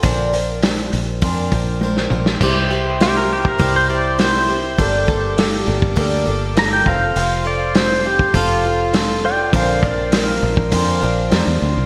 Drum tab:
CC |----------------|x---------------|----------------|----------------|
HH |o-o-o-o-o-o-----|----o---o---o---|o---o---o---o---|o---o---o---o---|
SD |----o--------o-o|----o-------o---|----o-------o---|----o-------o---|
T1 |------------o---|----------------|----------------|----------------|
T2 |--------------o-|----------------|----------------|----------------|
BD |o-------o-o-----|o------oo-------|o-o----oo-----o-|-------oo-------|

CC |----------------|
HH |o---o---o---o---|
SD |----o-------o---|
T1 |----------------|
T2 |----------------|
BD |o-o----oo-------|